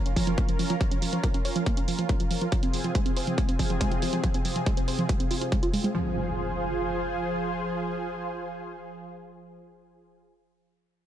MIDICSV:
0, 0, Header, 1, 5, 480
1, 0, Start_track
1, 0, Key_signature, -4, "minor"
1, 0, Tempo, 428571
1, 904, Time_signature, 4, 2, 24, 8
1, 12388, End_track
2, 0, Start_track
2, 0, Title_t, "Analog synth pad"
2, 0, Program_c, 0, 89
2, 0, Note_on_c, 0, 61, 84
2, 0, Note_on_c, 0, 65, 75
2, 0, Note_on_c, 0, 70, 86
2, 2785, Note_off_c, 0, 61, 0
2, 2785, Note_off_c, 0, 70, 0
2, 2824, Note_on_c, 0, 60, 75
2, 2825, Note_on_c, 0, 48, 80
2, 2826, Note_on_c, 0, 68, 84
2, 6619, Note_off_c, 0, 65, 0
2, 6625, Note_off_c, 0, 60, 0
2, 6626, Note_off_c, 0, 48, 0
2, 6626, Note_off_c, 0, 68, 0
2, 6665, Note_on_c, 0, 65, 72
2, 6665, Note_on_c, 0, 72, 88
2, 6667, Note_on_c, 0, 53, 79
2, 6667, Note_on_c, 0, 68, 72
2, 11356, Note_off_c, 0, 53, 0
2, 11356, Note_off_c, 0, 65, 0
2, 11356, Note_off_c, 0, 68, 0
2, 11356, Note_off_c, 0, 72, 0
2, 12388, End_track
3, 0, Start_track
3, 0, Title_t, "Synth arpeggio sound"
3, 0, Program_c, 1, 84
3, 65, Note_on_c, 1, 61, 75
3, 131, Note_off_c, 1, 61, 0
3, 185, Note_on_c, 1, 53, 74
3, 284, Note_off_c, 1, 53, 0
3, 306, Note_on_c, 1, 53, 76
3, 371, Note_off_c, 1, 53, 0
3, 424, Note_on_c, 1, 58, 91
3, 490, Note_off_c, 1, 58, 0
3, 545, Note_on_c, 1, 53, 71
3, 611, Note_off_c, 1, 53, 0
3, 665, Note_on_c, 1, 53, 75
3, 731, Note_off_c, 1, 53, 0
3, 786, Note_on_c, 1, 53, 96
3, 851, Note_off_c, 1, 53, 0
3, 904, Note_on_c, 1, 53, 80
3, 970, Note_off_c, 1, 53, 0
3, 1024, Note_on_c, 1, 61, 74
3, 1090, Note_off_c, 1, 61, 0
3, 1145, Note_on_c, 1, 53, 70
3, 1244, Note_off_c, 1, 53, 0
3, 1264, Note_on_c, 1, 53, 73
3, 1330, Note_off_c, 1, 53, 0
3, 1385, Note_on_c, 1, 58, 99
3, 1451, Note_off_c, 1, 58, 0
3, 1506, Note_on_c, 1, 61, 73
3, 1571, Note_off_c, 1, 61, 0
3, 1624, Note_on_c, 1, 73, 76
3, 1690, Note_off_c, 1, 73, 0
3, 1745, Note_on_c, 1, 53, 75
3, 1844, Note_off_c, 1, 53, 0
3, 1866, Note_on_c, 1, 58, 80
3, 1931, Note_off_c, 1, 58, 0
3, 1985, Note_on_c, 1, 61, 71
3, 2051, Note_off_c, 1, 61, 0
3, 2106, Note_on_c, 1, 53, 73
3, 2204, Note_off_c, 1, 53, 0
3, 2226, Note_on_c, 1, 53, 75
3, 2291, Note_off_c, 1, 53, 0
3, 2345, Note_on_c, 1, 58, 90
3, 2411, Note_off_c, 1, 58, 0
3, 2465, Note_on_c, 1, 53, 74
3, 2531, Note_off_c, 1, 53, 0
3, 2585, Note_on_c, 1, 53, 76
3, 2651, Note_off_c, 1, 53, 0
3, 2706, Note_on_c, 1, 53, 97
3, 2771, Note_off_c, 1, 53, 0
3, 2946, Note_on_c, 1, 60, 73
3, 3011, Note_off_c, 1, 60, 0
3, 3065, Note_on_c, 1, 53, 74
3, 3164, Note_off_c, 1, 53, 0
3, 3186, Note_on_c, 1, 53, 75
3, 3251, Note_off_c, 1, 53, 0
3, 3306, Note_on_c, 1, 56, 95
3, 3371, Note_off_c, 1, 56, 0
3, 3425, Note_on_c, 1, 60, 77
3, 3491, Note_off_c, 1, 60, 0
3, 3547, Note_on_c, 1, 72, 73
3, 3612, Note_off_c, 1, 72, 0
3, 3668, Note_on_c, 1, 53, 73
3, 3765, Note_off_c, 1, 53, 0
3, 3787, Note_on_c, 1, 56, 79
3, 3852, Note_off_c, 1, 56, 0
3, 3906, Note_on_c, 1, 60, 72
3, 3971, Note_off_c, 1, 60, 0
3, 4027, Note_on_c, 1, 53, 71
3, 4125, Note_off_c, 1, 53, 0
3, 4147, Note_on_c, 1, 53, 76
3, 4212, Note_off_c, 1, 53, 0
3, 4266, Note_on_c, 1, 56, 91
3, 4331, Note_off_c, 1, 56, 0
3, 4385, Note_on_c, 1, 53, 72
3, 4451, Note_off_c, 1, 53, 0
3, 4506, Note_on_c, 1, 53, 78
3, 4571, Note_off_c, 1, 53, 0
3, 4625, Note_on_c, 1, 53, 93
3, 4691, Note_off_c, 1, 53, 0
3, 4746, Note_on_c, 1, 53, 80
3, 4811, Note_off_c, 1, 53, 0
3, 4867, Note_on_c, 1, 60, 73
3, 4931, Note_off_c, 1, 60, 0
3, 4985, Note_on_c, 1, 53, 71
3, 5084, Note_off_c, 1, 53, 0
3, 5107, Note_on_c, 1, 53, 72
3, 5171, Note_off_c, 1, 53, 0
3, 5226, Note_on_c, 1, 56, 98
3, 5291, Note_off_c, 1, 56, 0
3, 5346, Note_on_c, 1, 60, 75
3, 5411, Note_off_c, 1, 60, 0
3, 5465, Note_on_c, 1, 72, 72
3, 5530, Note_off_c, 1, 72, 0
3, 5585, Note_on_c, 1, 53, 71
3, 5684, Note_off_c, 1, 53, 0
3, 5704, Note_on_c, 1, 56, 80
3, 5770, Note_off_c, 1, 56, 0
3, 5824, Note_on_c, 1, 60, 73
3, 5890, Note_off_c, 1, 60, 0
3, 5945, Note_on_c, 1, 65, 97
3, 5984, Note_off_c, 1, 65, 0
3, 6064, Note_on_c, 1, 65, 75
3, 6130, Note_off_c, 1, 65, 0
3, 6184, Note_on_c, 1, 56, 77
3, 6250, Note_off_c, 1, 56, 0
3, 6304, Note_on_c, 1, 65, 94
3, 6370, Note_off_c, 1, 65, 0
3, 6422, Note_on_c, 1, 56, 76
3, 6489, Note_off_c, 1, 56, 0
3, 6542, Note_on_c, 1, 56, 74
3, 6582, Note_off_c, 1, 56, 0
3, 6661, Note_on_c, 1, 53, 89
3, 6885, Note_off_c, 1, 53, 0
3, 12388, End_track
4, 0, Start_track
4, 0, Title_t, "Impact"
4, 0, Program_c, 2, 103
4, 6663, Note_on_c, 2, 60, 58
4, 11530, Note_off_c, 2, 60, 0
4, 12388, End_track
5, 0, Start_track
5, 0, Title_t, "Drums"
5, 64, Note_on_c, 9, 42, 47
5, 176, Note_off_c, 9, 42, 0
5, 184, Note_on_c, 9, 36, 59
5, 185, Note_on_c, 9, 46, 98
5, 296, Note_off_c, 9, 36, 0
5, 297, Note_off_c, 9, 46, 0
5, 305, Note_on_c, 9, 42, 49
5, 417, Note_off_c, 9, 42, 0
5, 423, Note_on_c, 9, 36, 112
5, 424, Note_on_c, 9, 42, 80
5, 535, Note_off_c, 9, 36, 0
5, 536, Note_off_c, 9, 42, 0
5, 544, Note_on_c, 9, 42, 47
5, 656, Note_off_c, 9, 42, 0
5, 664, Note_on_c, 9, 46, 99
5, 776, Note_off_c, 9, 46, 0
5, 784, Note_on_c, 9, 42, 47
5, 896, Note_off_c, 9, 42, 0
5, 903, Note_on_c, 9, 36, 110
5, 904, Note_on_c, 9, 42, 85
5, 1015, Note_off_c, 9, 36, 0
5, 1016, Note_off_c, 9, 42, 0
5, 1024, Note_on_c, 9, 42, 51
5, 1136, Note_off_c, 9, 42, 0
5, 1143, Note_on_c, 9, 46, 94
5, 1255, Note_off_c, 9, 46, 0
5, 1263, Note_on_c, 9, 42, 50
5, 1375, Note_off_c, 9, 42, 0
5, 1384, Note_on_c, 9, 36, 108
5, 1384, Note_on_c, 9, 42, 86
5, 1496, Note_off_c, 9, 36, 0
5, 1496, Note_off_c, 9, 42, 0
5, 1504, Note_on_c, 9, 42, 49
5, 1616, Note_off_c, 9, 42, 0
5, 1624, Note_on_c, 9, 46, 97
5, 1736, Note_off_c, 9, 46, 0
5, 1744, Note_on_c, 9, 42, 49
5, 1856, Note_off_c, 9, 42, 0
5, 1863, Note_on_c, 9, 36, 107
5, 1864, Note_on_c, 9, 42, 87
5, 1975, Note_off_c, 9, 36, 0
5, 1976, Note_off_c, 9, 42, 0
5, 1984, Note_on_c, 9, 42, 52
5, 2096, Note_off_c, 9, 42, 0
5, 2105, Note_on_c, 9, 46, 96
5, 2217, Note_off_c, 9, 46, 0
5, 2225, Note_on_c, 9, 42, 49
5, 2337, Note_off_c, 9, 42, 0
5, 2344, Note_on_c, 9, 36, 105
5, 2344, Note_on_c, 9, 42, 84
5, 2456, Note_off_c, 9, 36, 0
5, 2456, Note_off_c, 9, 42, 0
5, 2464, Note_on_c, 9, 42, 48
5, 2576, Note_off_c, 9, 42, 0
5, 2583, Note_on_c, 9, 46, 96
5, 2695, Note_off_c, 9, 46, 0
5, 2704, Note_on_c, 9, 42, 49
5, 2816, Note_off_c, 9, 42, 0
5, 2823, Note_on_c, 9, 42, 88
5, 2824, Note_on_c, 9, 36, 108
5, 2935, Note_off_c, 9, 42, 0
5, 2936, Note_off_c, 9, 36, 0
5, 2944, Note_on_c, 9, 42, 48
5, 3056, Note_off_c, 9, 42, 0
5, 3063, Note_on_c, 9, 46, 94
5, 3175, Note_off_c, 9, 46, 0
5, 3184, Note_on_c, 9, 42, 51
5, 3296, Note_off_c, 9, 42, 0
5, 3304, Note_on_c, 9, 36, 106
5, 3304, Note_on_c, 9, 42, 85
5, 3416, Note_off_c, 9, 36, 0
5, 3416, Note_off_c, 9, 42, 0
5, 3425, Note_on_c, 9, 42, 50
5, 3537, Note_off_c, 9, 42, 0
5, 3545, Note_on_c, 9, 46, 96
5, 3657, Note_off_c, 9, 46, 0
5, 3665, Note_on_c, 9, 42, 51
5, 3777, Note_off_c, 9, 42, 0
5, 3785, Note_on_c, 9, 36, 111
5, 3785, Note_on_c, 9, 42, 90
5, 3897, Note_off_c, 9, 36, 0
5, 3897, Note_off_c, 9, 42, 0
5, 3905, Note_on_c, 9, 42, 50
5, 4017, Note_off_c, 9, 42, 0
5, 4024, Note_on_c, 9, 36, 54
5, 4024, Note_on_c, 9, 46, 91
5, 4136, Note_off_c, 9, 36, 0
5, 4136, Note_off_c, 9, 46, 0
5, 4145, Note_on_c, 9, 42, 50
5, 4257, Note_off_c, 9, 42, 0
5, 4264, Note_on_c, 9, 36, 105
5, 4265, Note_on_c, 9, 42, 89
5, 4376, Note_off_c, 9, 36, 0
5, 4377, Note_off_c, 9, 42, 0
5, 4385, Note_on_c, 9, 42, 48
5, 4497, Note_off_c, 9, 42, 0
5, 4504, Note_on_c, 9, 46, 95
5, 4616, Note_off_c, 9, 46, 0
5, 4624, Note_on_c, 9, 42, 51
5, 4736, Note_off_c, 9, 42, 0
5, 4744, Note_on_c, 9, 36, 107
5, 4744, Note_on_c, 9, 42, 90
5, 4856, Note_off_c, 9, 36, 0
5, 4856, Note_off_c, 9, 42, 0
5, 4864, Note_on_c, 9, 42, 51
5, 4976, Note_off_c, 9, 42, 0
5, 4983, Note_on_c, 9, 46, 92
5, 5095, Note_off_c, 9, 46, 0
5, 5104, Note_on_c, 9, 42, 51
5, 5216, Note_off_c, 9, 42, 0
5, 5224, Note_on_c, 9, 36, 105
5, 5224, Note_on_c, 9, 42, 91
5, 5336, Note_off_c, 9, 36, 0
5, 5336, Note_off_c, 9, 42, 0
5, 5345, Note_on_c, 9, 42, 51
5, 5457, Note_off_c, 9, 42, 0
5, 5464, Note_on_c, 9, 46, 96
5, 5576, Note_off_c, 9, 46, 0
5, 5585, Note_on_c, 9, 42, 50
5, 5697, Note_off_c, 9, 42, 0
5, 5703, Note_on_c, 9, 36, 109
5, 5704, Note_on_c, 9, 42, 88
5, 5815, Note_off_c, 9, 36, 0
5, 5816, Note_off_c, 9, 42, 0
5, 5825, Note_on_c, 9, 42, 53
5, 5937, Note_off_c, 9, 42, 0
5, 5944, Note_on_c, 9, 46, 92
5, 6056, Note_off_c, 9, 46, 0
5, 6065, Note_on_c, 9, 42, 53
5, 6177, Note_off_c, 9, 42, 0
5, 6183, Note_on_c, 9, 36, 103
5, 6184, Note_on_c, 9, 42, 89
5, 6295, Note_off_c, 9, 36, 0
5, 6296, Note_off_c, 9, 42, 0
5, 6304, Note_on_c, 9, 42, 49
5, 6416, Note_off_c, 9, 42, 0
5, 6424, Note_on_c, 9, 46, 95
5, 6536, Note_off_c, 9, 46, 0
5, 6545, Note_on_c, 9, 42, 53
5, 6657, Note_off_c, 9, 42, 0
5, 12388, End_track
0, 0, End_of_file